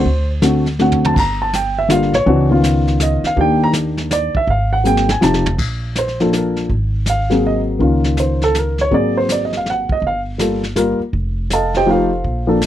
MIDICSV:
0, 0, Header, 1, 5, 480
1, 0, Start_track
1, 0, Tempo, 369458
1, 69, Time_signature, 3, 2, 24, 8
1, 16450, End_track
2, 0, Start_track
2, 0, Title_t, "Grand piano"
2, 0, Program_c, 0, 0
2, 0, Note_on_c, 0, 72, 85
2, 358, Note_off_c, 0, 72, 0
2, 542, Note_on_c, 0, 50, 67
2, 546, Note_on_c, 0, 57, 66
2, 551, Note_on_c, 0, 60, 67
2, 559, Note_on_c, 0, 66, 79
2, 823, Note_off_c, 0, 50, 0
2, 825, Note_off_c, 0, 57, 0
2, 827, Note_off_c, 0, 60, 0
2, 831, Note_off_c, 0, 66, 0
2, 1029, Note_on_c, 0, 50, 67
2, 1033, Note_on_c, 0, 57, 63
2, 1043, Note_on_c, 0, 60, 62
2, 1052, Note_on_c, 0, 66, 76
2, 1059, Note_on_c, 0, 78, 82
2, 1343, Note_off_c, 0, 78, 0
2, 1375, Note_on_c, 0, 81, 83
2, 1467, Note_off_c, 0, 81, 0
2, 1486, Note_on_c, 0, 81, 63
2, 1506, Note_off_c, 0, 50, 0
2, 1507, Note_off_c, 0, 57, 0
2, 1513, Note_off_c, 0, 60, 0
2, 1517, Note_off_c, 0, 66, 0
2, 1519, Note_off_c, 0, 81, 0
2, 1544, Note_on_c, 0, 82, 97
2, 1825, Note_off_c, 0, 82, 0
2, 1842, Note_on_c, 0, 81, 80
2, 1992, Note_off_c, 0, 81, 0
2, 2012, Note_on_c, 0, 79, 78
2, 2298, Note_off_c, 0, 79, 0
2, 2319, Note_on_c, 0, 76, 93
2, 2448, Note_on_c, 0, 50, 68
2, 2463, Note_on_c, 0, 55, 57
2, 2467, Note_on_c, 0, 58, 58
2, 2470, Note_off_c, 0, 76, 0
2, 2476, Note_on_c, 0, 65, 74
2, 2497, Note_on_c, 0, 77, 90
2, 2734, Note_off_c, 0, 50, 0
2, 2741, Note_off_c, 0, 55, 0
2, 2743, Note_off_c, 0, 58, 0
2, 2747, Note_off_c, 0, 65, 0
2, 2780, Note_off_c, 0, 77, 0
2, 2791, Note_on_c, 0, 73, 93
2, 2937, Note_on_c, 0, 52, 83
2, 2947, Note_on_c, 0, 60, 69
2, 2952, Note_on_c, 0, 62, 69
2, 2963, Note_on_c, 0, 66, 92
2, 3217, Note_off_c, 0, 52, 0
2, 3222, Note_off_c, 0, 60, 0
2, 3225, Note_off_c, 0, 62, 0
2, 3227, Note_off_c, 0, 73, 0
2, 3230, Note_off_c, 0, 66, 0
2, 3253, Note_on_c, 0, 51, 74
2, 3259, Note_on_c, 0, 59, 67
2, 3263, Note_on_c, 0, 61, 65
2, 3272, Note_on_c, 0, 65, 83
2, 3932, Note_on_c, 0, 75, 77
2, 4216, Note_off_c, 0, 75, 0
2, 4244, Note_on_c, 0, 77, 87
2, 4277, Note_off_c, 0, 51, 0
2, 4280, Note_off_c, 0, 59, 0
2, 4283, Note_off_c, 0, 61, 0
2, 4287, Note_off_c, 0, 65, 0
2, 4371, Note_on_c, 0, 51, 64
2, 4379, Note_on_c, 0, 58, 59
2, 4390, Note_on_c, 0, 67, 70
2, 4391, Note_off_c, 0, 77, 0
2, 4391, Note_on_c, 0, 62, 61
2, 4427, Note_on_c, 0, 79, 91
2, 4704, Note_off_c, 0, 79, 0
2, 4724, Note_on_c, 0, 82, 101
2, 4815, Note_off_c, 0, 82, 0
2, 5362, Note_on_c, 0, 74, 83
2, 5650, Note_off_c, 0, 74, 0
2, 5674, Note_on_c, 0, 76, 89
2, 5711, Note_off_c, 0, 51, 0
2, 5715, Note_off_c, 0, 58, 0
2, 5721, Note_off_c, 0, 62, 0
2, 5721, Note_off_c, 0, 67, 0
2, 5825, Note_off_c, 0, 76, 0
2, 5850, Note_on_c, 0, 77, 85
2, 6135, Note_off_c, 0, 77, 0
2, 6141, Note_on_c, 0, 78, 89
2, 6286, Note_on_c, 0, 54, 55
2, 6291, Note_on_c, 0, 58, 54
2, 6298, Note_off_c, 0, 78, 0
2, 6300, Note_on_c, 0, 60, 50
2, 6304, Note_on_c, 0, 68, 60
2, 6325, Note_on_c, 0, 79, 83
2, 6570, Note_off_c, 0, 54, 0
2, 6573, Note_off_c, 0, 58, 0
2, 6578, Note_off_c, 0, 60, 0
2, 6580, Note_off_c, 0, 68, 0
2, 6612, Note_off_c, 0, 79, 0
2, 6635, Note_on_c, 0, 80, 81
2, 6769, Note_on_c, 0, 53, 69
2, 6773, Note_on_c, 0, 60, 56
2, 6780, Note_on_c, 0, 63, 62
2, 6786, Note_off_c, 0, 80, 0
2, 6791, Note_on_c, 0, 67, 74
2, 6803, Note_on_c, 0, 81, 80
2, 7052, Note_off_c, 0, 53, 0
2, 7054, Note_off_c, 0, 60, 0
2, 7058, Note_off_c, 0, 63, 0
2, 7063, Note_off_c, 0, 67, 0
2, 7158, Note_off_c, 0, 81, 0
2, 7776, Note_on_c, 0, 72, 69
2, 8060, Note_on_c, 0, 53, 64
2, 8061, Note_on_c, 0, 58, 54
2, 8073, Note_on_c, 0, 62, 53
2, 8076, Note_on_c, 0, 69, 64
2, 8204, Note_off_c, 0, 72, 0
2, 8266, Note_on_c, 0, 70, 58
2, 8544, Note_off_c, 0, 70, 0
2, 8670, Note_off_c, 0, 53, 0
2, 8670, Note_off_c, 0, 58, 0
2, 8676, Note_off_c, 0, 62, 0
2, 8678, Note_off_c, 0, 69, 0
2, 9218, Note_on_c, 0, 77, 89
2, 9482, Note_on_c, 0, 54, 66
2, 9486, Note_on_c, 0, 58, 61
2, 9500, Note_on_c, 0, 60, 59
2, 9506, Note_on_c, 0, 68, 67
2, 9647, Note_off_c, 0, 77, 0
2, 9700, Note_on_c, 0, 75, 78
2, 9874, Note_off_c, 0, 75, 0
2, 10102, Note_off_c, 0, 54, 0
2, 10104, Note_off_c, 0, 58, 0
2, 10111, Note_off_c, 0, 60, 0
2, 10114, Note_off_c, 0, 68, 0
2, 10122, Note_on_c, 0, 51, 63
2, 10131, Note_on_c, 0, 58, 57
2, 10142, Note_on_c, 0, 61, 59
2, 10151, Note_on_c, 0, 65, 66
2, 10651, Note_on_c, 0, 72, 69
2, 10938, Note_off_c, 0, 72, 0
2, 10961, Note_on_c, 0, 69, 92
2, 11111, Note_off_c, 0, 69, 0
2, 11152, Note_on_c, 0, 70, 69
2, 11429, Note_off_c, 0, 70, 0
2, 11451, Note_on_c, 0, 73, 88
2, 11471, Note_off_c, 0, 51, 0
2, 11475, Note_off_c, 0, 58, 0
2, 11481, Note_off_c, 0, 61, 0
2, 11485, Note_off_c, 0, 65, 0
2, 11574, Note_on_c, 0, 54, 59
2, 11576, Note_on_c, 0, 58, 58
2, 11587, Note_on_c, 0, 60, 57
2, 11597, Note_off_c, 0, 73, 0
2, 11598, Note_on_c, 0, 68, 69
2, 11618, Note_on_c, 0, 74, 85
2, 11902, Note_off_c, 0, 74, 0
2, 11919, Note_on_c, 0, 72, 80
2, 12071, Note_off_c, 0, 72, 0
2, 12109, Note_on_c, 0, 74, 76
2, 12242, Note_off_c, 0, 74, 0
2, 12277, Note_on_c, 0, 75, 68
2, 12406, Note_off_c, 0, 75, 0
2, 12436, Note_on_c, 0, 77, 73
2, 12566, Note_off_c, 0, 77, 0
2, 12602, Note_on_c, 0, 78, 88
2, 12875, Note_off_c, 0, 78, 0
2, 12892, Note_on_c, 0, 75, 83
2, 12918, Note_off_c, 0, 54, 0
2, 12919, Note_off_c, 0, 58, 0
2, 12924, Note_off_c, 0, 60, 0
2, 12930, Note_off_c, 0, 68, 0
2, 13038, Note_off_c, 0, 75, 0
2, 13079, Note_on_c, 0, 77, 85
2, 13249, Note_off_c, 0, 77, 0
2, 13489, Note_on_c, 0, 55, 53
2, 13497, Note_on_c, 0, 58, 52
2, 13509, Note_on_c, 0, 65, 48
2, 13512, Note_on_c, 0, 69, 62
2, 13776, Note_off_c, 0, 55, 0
2, 13780, Note_off_c, 0, 58, 0
2, 13786, Note_off_c, 0, 65, 0
2, 13788, Note_off_c, 0, 69, 0
2, 13974, Note_on_c, 0, 55, 62
2, 13983, Note_on_c, 0, 58, 63
2, 13991, Note_on_c, 0, 65, 61
2, 13993, Note_on_c, 0, 70, 73
2, 14260, Note_off_c, 0, 55, 0
2, 14264, Note_off_c, 0, 58, 0
2, 14268, Note_off_c, 0, 65, 0
2, 14269, Note_off_c, 0, 70, 0
2, 14984, Note_on_c, 0, 81, 74
2, 14985, Note_on_c, 0, 69, 61
2, 14988, Note_on_c, 0, 75, 64
2, 14989, Note_on_c, 0, 77, 65
2, 15268, Note_off_c, 0, 69, 0
2, 15268, Note_off_c, 0, 81, 0
2, 15270, Note_off_c, 0, 75, 0
2, 15270, Note_off_c, 0, 77, 0
2, 15288, Note_on_c, 0, 67, 74
2, 15288, Note_on_c, 0, 72, 67
2, 15291, Note_on_c, 0, 75, 68
2, 15293, Note_on_c, 0, 79, 93
2, 15413, Note_on_c, 0, 53, 70
2, 15418, Note_off_c, 0, 67, 0
2, 15421, Note_on_c, 0, 57, 62
2, 15432, Note_on_c, 0, 63, 65
2, 15437, Note_on_c, 0, 67, 73
2, 15438, Note_off_c, 0, 72, 0
2, 15440, Note_off_c, 0, 75, 0
2, 15441, Note_off_c, 0, 79, 0
2, 15466, Note_on_c, 0, 77, 77
2, 15467, Note_on_c, 0, 65, 62
2, 15474, Note_on_c, 0, 69, 60
2, 15476, Note_on_c, 0, 72, 58
2, 15700, Note_off_c, 0, 53, 0
2, 15704, Note_off_c, 0, 57, 0
2, 15709, Note_off_c, 0, 63, 0
2, 15712, Note_off_c, 0, 67, 0
2, 16186, Note_off_c, 0, 77, 0
2, 16187, Note_off_c, 0, 65, 0
2, 16190, Note_off_c, 0, 69, 0
2, 16191, Note_off_c, 0, 72, 0
2, 16203, Note_on_c, 0, 53, 67
2, 16203, Note_on_c, 0, 58, 62
2, 16216, Note_on_c, 0, 62, 65
2, 16225, Note_on_c, 0, 69, 75
2, 16364, Note_off_c, 0, 53, 0
2, 16364, Note_off_c, 0, 58, 0
2, 16370, Note_off_c, 0, 62, 0
2, 16375, Note_off_c, 0, 69, 0
2, 16450, End_track
3, 0, Start_track
3, 0, Title_t, "Upright bass"
3, 0, Program_c, 1, 32
3, 69, Note_on_c, 1, 38, 86
3, 1452, Note_off_c, 1, 38, 0
3, 1510, Note_on_c, 1, 31, 84
3, 2722, Note_off_c, 1, 31, 0
3, 2762, Note_on_c, 1, 34, 66
3, 2924, Note_off_c, 1, 34, 0
3, 2943, Note_on_c, 1, 37, 86
3, 4158, Note_off_c, 1, 37, 0
3, 4373, Note_on_c, 1, 39, 80
3, 5593, Note_off_c, 1, 39, 0
3, 5812, Note_on_c, 1, 32, 87
3, 6722, Note_off_c, 1, 32, 0
3, 6776, Note_on_c, 1, 29, 79
3, 7223, Note_off_c, 1, 29, 0
3, 7251, Note_on_c, 1, 34, 80
3, 8643, Note_off_c, 1, 34, 0
3, 8699, Note_on_c, 1, 32, 81
3, 10088, Note_off_c, 1, 32, 0
3, 10138, Note_on_c, 1, 37, 81
3, 11529, Note_off_c, 1, 37, 0
3, 11583, Note_on_c, 1, 32, 79
3, 12802, Note_off_c, 1, 32, 0
3, 13015, Note_on_c, 1, 31, 75
3, 14240, Note_off_c, 1, 31, 0
3, 14461, Note_on_c, 1, 29, 80
3, 15854, Note_off_c, 1, 29, 0
3, 15905, Note_on_c, 1, 34, 78
3, 16450, Note_off_c, 1, 34, 0
3, 16450, End_track
4, 0, Start_track
4, 0, Title_t, "Muted upright bass strokes"
4, 4203, Note_on_c, 9, 29, 39
4, 4333, Note_off_c, 9, 29, 0
4, 5650, Note_on_c, 9, 29, 37
4, 5780, Note_off_c, 9, 29, 0
4, 12849, Note_on_c, 9, 29, 34
4, 12979, Note_off_c, 9, 29, 0
4, 14288, Note_on_c, 9, 29, 34
4, 14417, Note_off_c, 9, 29, 0
4, 16450, End_track
5, 0, Start_track
5, 0, Title_t, "Drums"
5, 68, Note_on_c, 9, 25, 50
5, 547, Note_on_c, 9, 38, 65
5, 548, Note_on_c, 9, 44, 58
5, 677, Note_off_c, 9, 38, 0
5, 678, Note_off_c, 9, 44, 0
5, 857, Note_on_c, 9, 38, 43
5, 987, Note_off_c, 9, 38, 0
5, 1029, Note_on_c, 9, 38, 49
5, 1159, Note_off_c, 9, 38, 0
5, 1192, Note_on_c, 9, 43, 64
5, 1322, Note_off_c, 9, 43, 0
5, 1359, Note_on_c, 9, 43, 81
5, 1488, Note_off_c, 9, 43, 0
5, 1510, Note_on_c, 9, 36, 79
5, 1519, Note_off_c, 9, 25, 0
5, 1519, Note_on_c, 9, 25, 51
5, 1519, Note_on_c, 9, 49, 75
5, 1640, Note_off_c, 9, 36, 0
5, 1649, Note_off_c, 9, 49, 0
5, 1992, Note_on_c, 9, 38, 62
5, 1994, Note_on_c, 9, 44, 55
5, 2122, Note_off_c, 9, 38, 0
5, 2124, Note_off_c, 9, 44, 0
5, 2464, Note_on_c, 9, 38, 62
5, 2465, Note_on_c, 9, 44, 53
5, 2593, Note_off_c, 9, 38, 0
5, 2595, Note_off_c, 9, 44, 0
5, 2633, Note_on_c, 9, 38, 30
5, 2763, Note_off_c, 9, 38, 0
5, 2773, Note_on_c, 9, 38, 40
5, 2783, Note_off_c, 9, 38, 0
5, 2783, Note_on_c, 9, 38, 46
5, 2913, Note_off_c, 9, 38, 0
5, 2945, Note_on_c, 9, 36, 33
5, 2947, Note_off_c, 9, 25, 0
5, 2947, Note_on_c, 9, 25, 55
5, 3075, Note_off_c, 9, 36, 0
5, 3424, Note_on_c, 9, 38, 62
5, 3425, Note_on_c, 9, 44, 61
5, 3554, Note_off_c, 9, 38, 0
5, 3555, Note_off_c, 9, 44, 0
5, 3734, Note_on_c, 9, 38, 39
5, 3864, Note_off_c, 9, 38, 0
5, 3896, Note_on_c, 9, 38, 65
5, 3897, Note_on_c, 9, 44, 55
5, 4026, Note_off_c, 9, 38, 0
5, 4027, Note_off_c, 9, 44, 0
5, 4210, Note_on_c, 9, 38, 39
5, 4340, Note_off_c, 9, 38, 0
5, 4378, Note_off_c, 9, 25, 0
5, 4378, Note_on_c, 9, 25, 50
5, 4378, Note_on_c, 9, 36, 36
5, 4508, Note_off_c, 9, 36, 0
5, 4850, Note_on_c, 9, 38, 67
5, 4851, Note_on_c, 9, 44, 52
5, 4980, Note_off_c, 9, 38, 0
5, 4981, Note_off_c, 9, 44, 0
5, 5162, Note_on_c, 9, 38, 42
5, 5292, Note_off_c, 9, 38, 0
5, 5337, Note_on_c, 9, 38, 62
5, 5338, Note_on_c, 9, 44, 52
5, 5467, Note_off_c, 9, 38, 0
5, 5468, Note_off_c, 9, 44, 0
5, 5648, Note_on_c, 9, 36, 54
5, 5778, Note_off_c, 9, 36, 0
5, 5816, Note_on_c, 9, 36, 34
5, 5820, Note_off_c, 9, 25, 0
5, 5820, Note_on_c, 9, 25, 48
5, 5946, Note_off_c, 9, 36, 0
5, 6298, Note_on_c, 9, 44, 62
5, 6428, Note_off_c, 9, 44, 0
5, 6459, Note_on_c, 9, 38, 54
5, 6589, Note_off_c, 9, 38, 0
5, 6612, Note_on_c, 9, 38, 72
5, 6742, Note_off_c, 9, 38, 0
5, 6781, Note_on_c, 9, 38, 67
5, 6783, Note_on_c, 9, 44, 53
5, 6911, Note_off_c, 9, 38, 0
5, 6913, Note_off_c, 9, 44, 0
5, 6938, Note_on_c, 9, 38, 74
5, 7068, Note_off_c, 9, 38, 0
5, 7093, Note_on_c, 9, 43, 88
5, 7223, Note_off_c, 9, 43, 0
5, 7256, Note_off_c, 9, 25, 0
5, 7256, Note_on_c, 9, 25, 45
5, 7256, Note_on_c, 9, 36, 65
5, 7256, Note_on_c, 9, 49, 68
5, 7385, Note_off_c, 9, 49, 0
5, 7386, Note_off_c, 9, 36, 0
5, 7736, Note_on_c, 9, 38, 59
5, 7738, Note_on_c, 9, 44, 52
5, 7866, Note_off_c, 9, 38, 0
5, 7868, Note_off_c, 9, 44, 0
5, 7899, Note_on_c, 9, 38, 29
5, 8029, Note_off_c, 9, 38, 0
5, 8056, Note_on_c, 9, 38, 42
5, 8186, Note_off_c, 9, 38, 0
5, 8222, Note_on_c, 9, 38, 57
5, 8224, Note_on_c, 9, 44, 52
5, 8352, Note_off_c, 9, 38, 0
5, 8354, Note_off_c, 9, 44, 0
5, 8528, Note_on_c, 9, 38, 35
5, 8658, Note_off_c, 9, 38, 0
5, 8697, Note_off_c, 9, 25, 0
5, 8697, Note_on_c, 9, 25, 48
5, 8698, Note_on_c, 9, 36, 30
5, 8828, Note_off_c, 9, 36, 0
5, 9172, Note_on_c, 9, 38, 58
5, 9173, Note_on_c, 9, 44, 53
5, 9302, Note_off_c, 9, 38, 0
5, 9303, Note_off_c, 9, 44, 0
5, 9489, Note_on_c, 9, 38, 34
5, 9619, Note_off_c, 9, 38, 0
5, 10135, Note_off_c, 9, 25, 0
5, 10135, Note_on_c, 9, 25, 46
5, 10139, Note_on_c, 9, 36, 33
5, 10269, Note_off_c, 9, 36, 0
5, 10447, Note_on_c, 9, 38, 38
5, 10577, Note_off_c, 9, 38, 0
5, 10615, Note_on_c, 9, 38, 54
5, 10616, Note_on_c, 9, 44, 57
5, 10745, Note_off_c, 9, 38, 0
5, 10746, Note_off_c, 9, 44, 0
5, 10934, Note_on_c, 9, 38, 37
5, 11064, Note_off_c, 9, 38, 0
5, 11103, Note_on_c, 9, 38, 53
5, 11105, Note_on_c, 9, 44, 53
5, 11233, Note_off_c, 9, 38, 0
5, 11235, Note_off_c, 9, 44, 0
5, 11410, Note_on_c, 9, 38, 36
5, 11539, Note_off_c, 9, 38, 0
5, 11579, Note_off_c, 9, 25, 0
5, 11579, Note_on_c, 9, 25, 49
5, 11582, Note_on_c, 9, 36, 31
5, 11712, Note_off_c, 9, 36, 0
5, 12068, Note_on_c, 9, 38, 55
5, 12069, Note_on_c, 9, 44, 57
5, 12198, Note_off_c, 9, 38, 0
5, 12199, Note_off_c, 9, 44, 0
5, 12377, Note_on_c, 9, 38, 36
5, 12507, Note_off_c, 9, 38, 0
5, 12549, Note_on_c, 9, 38, 35
5, 12679, Note_off_c, 9, 38, 0
5, 12853, Note_on_c, 9, 36, 50
5, 12983, Note_off_c, 9, 36, 0
5, 13020, Note_off_c, 9, 25, 0
5, 13020, Note_on_c, 9, 25, 46
5, 13020, Note_on_c, 9, 36, 33
5, 13150, Note_off_c, 9, 36, 0
5, 13502, Note_on_c, 9, 38, 58
5, 13504, Note_on_c, 9, 44, 58
5, 13632, Note_off_c, 9, 38, 0
5, 13634, Note_off_c, 9, 44, 0
5, 13817, Note_on_c, 9, 38, 38
5, 13947, Note_off_c, 9, 38, 0
5, 13981, Note_on_c, 9, 38, 55
5, 13982, Note_on_c, 9, 44, 55
5, 14110, Note_off_c, 9, 38, 0
5, 14112, Note_off_c, 9, 44, 0
5, 14463, Note_on_c, 9, 36, 33
5, 14468, Note_off_c, 9, 25, 0
5, 14468, Note_on_c, 9, 25, 51
5, 14593, Note_off_c, 9, 36, 0
5, 14945, Note_on_c, 9, 38, 58
5, 14947, Note_on_c, 9, 44, 56
5, 15075, Note_off_c, 9, 38, 0
5, 15076, Note_off_c, 9, 44, 0
5, 15257, Note_on_c, 9, 38, 37
5, 15387, Note_off_c, 9, 38, 0
5, 15908, Note_on_c, 9, 36, 33
5, 15910, Note_off_c, 9, 25, 0
5, 15910, Note_on_c, 9, 25, 47
5, 16038, Note_off_c, 9, 36, 0
5, 16389, Note_on_c, 9, 38, 58
5, 16390, Note_on_c, 9, 44, 57
5, 16450, Note_off_c, 9, 25, 0
5, 16450, Note_off_c, 9, 38, 0
5, 16450, Note_off_c, 9, 44, 0
5, 16450, End_track
0, 0, End_of_file